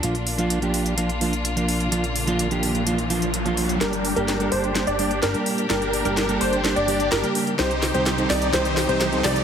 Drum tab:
HH |xxoxxxoxxxoxxxox|xxoxxxoxxxoxxxox|xxoxxxoxxxoxxxox|xxoxxxoxxxoxxxox|
SD |----------------|----------------|o---o---o---o---|o---o---o---o---|

HH |xxoxxxoxxxoxxxox|
SD |o-o-o-o-o-o-o-o-|